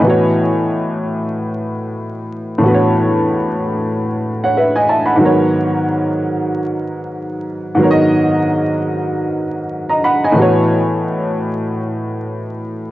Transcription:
X:1
M:4/4
L:1/16
Q:"Swing 16ths" 1/4=93
K:G#phr
V:1 name="Upright piano"
[dg] z12 z3 | z8 z3 [cf] [Be] [dg] [ea] [fb]- | [fb] z12 z3 | z12 z [d^a] [fb] [dg]- |
[dg] z12 z3 |]
V:2 name="Upright piano"
[A,,E,B,Fc]16 | [A,,E,B,FBc]16 | [G,,D,F,B,^Ac]16 | [G,,D,F,B,^Acd]16 |
[A,,E,B,Fc]16 |]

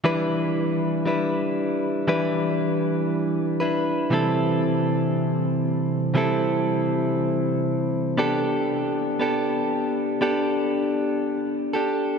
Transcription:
X:1
M:4/4
L:1/8
Q:1/4=59
K:Ephr
V:1 name="Clean electric guitar"
[E,G,DEB]2 [G,DEB]2 [E,G,DEB]3 [DEB] | [C,E,G,CEA]4 [C,E,G,CEA]4 | [B,DGA]2 [B,DGA]2 [B,DGA]3 [DGA] |]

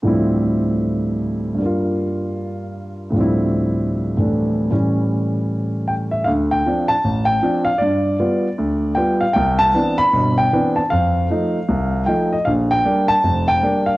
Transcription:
X:1
M:4/4
L:1/8
Q:"Swing" 1/4=154
K:Dm
V:1 name="Grand piano"
z8 | z8 | z8 | z6 g e |
f g2 a2 g2 f | d6 g f | g a2 =b2 g2 a | f6 g _e |
f g2 a2 g2 f |]
V:2 name="Grand piano" clef=bass
[D,,A,,F,G,CE]8 | [G,,G,B,F]8 | [D,,A,,F,G,CE]4- [D,,A,,F,G,CE] [A,,E,A,D]3 | [A,,E,G,^C]8 |
D,,2 [F,CD] z A,,,2 [F,CD] z | G,,2 [G,=B,F] z D,,2 [G,B,F] z | C,,2 [E,=B,CD] z [G,,,=B,,]2 [E,B,CD] z | F,,2 [F,A,_E] z C,,2 [F,A,E] z |
B,,,2 [G,B,D] z [F,,,F,,]2 [G,B,D] z |]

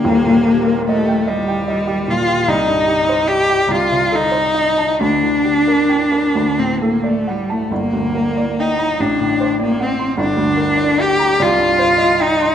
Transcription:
X:1
M:6/8
L:1/16
Q:3/8=49
K:Gm
V:1 name="Grand piano"
[E,,,E,,] B,, G B e g e g e G B,, G | C,, G,, G c e g C,, C, A c e a | D,, D, G B g B D,, A,, A d ^f a | G,,, D,, B d g b A,,, A,, c d ^f c' |
G,,, D,, B d g b C,, G,, c e g c' |]
V:2 name="Cello"
B,4 A,2 G,4 F2 | E4 G2 F2 E4 | D6- D C B, A, G, A, | B,4 E2 D3 B, C2 |
D4 G2 F4 E2 |]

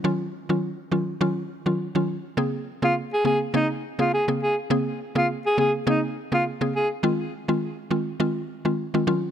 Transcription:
X:1
M:4/4
L:1/16
Q:"Swing 16ths" 1/4=103
K:Bbm
V:1 name="Alto saxophone"
z16 | z3 F z A A z E z2 F A z A z | z3 F z A A z E z2 F z2 A z | z16 |]
V:2 name="Synth pluck"
[E,G,DF]2 z [E,G,DF] z2 [E,G,DF]2 [E,G,DF]2 z [E,G,DF] z [E,G,DF] z2 | [D,B,CA]2 z [D,B,CA] z2 [D,B,CA]2 [D,B,CA]2 z [D,B,CA] z [D,B,CA] z2 | [D,B,CA]2 z [D,B,CA] z2 [D,B,CA]2 [D,B,CA]2 z [D,B,CA] z [D,B,CA] z2 | [E,A,CF]2 z [E,A,CF] z2 [E,A,CF]2 [E,A,CF]2 z [E,A,CF] z [E,A,CF] [E,G,DF]2 |]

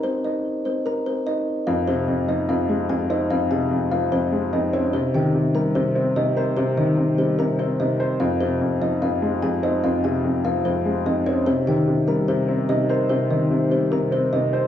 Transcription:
X:1
M:4/4
L:1/8
Q:1/4=147
K:Fm
V:1 name="Kalimba"
[Cc] [Ee]2 [Cc] [Bb] [Cc] [Ee] z | [Ff] [Cc]2 [Ee] [Ff]2 [Aa] [Ee] | [Ff] [Aa]2 [Ff] [Cc]2 [Ee] [Dd] | [Cc] [Gg]2 [Bb] [Cc]2 [Ee] [Bb] |
[Cc] [Ee]2 [Cc] [Bb] [Cc] [Ee] z | [Ff] [Cc]2 [Ee] [Ff]2 [Aa] [Ee] | [Ff] [Aa]2 [Ff] [Cc]2 [Ee] [Dd] | [Cc] [Gg]2 [Bb] [Cc]2 [Ee] [Bb] |
[Cc] [Ee]2 [Cc] [Bb] [Cc] [Ee] z |]
V:2 name="Felt piano" clef=bass
z8 | F,, C, F,, F, F,, A, F,, C | F,, C, F,, F, F,, A, F,, C | C, E, C, G, C, C C, c |
C, E, C, G, C, C C, c | F,, C, F,, F, F,, A, F,, C | F,, C, F,, F, F,, A, F,, C | C, E, C, G, C, C C, c |
C, E, C, G, C, C C, c |]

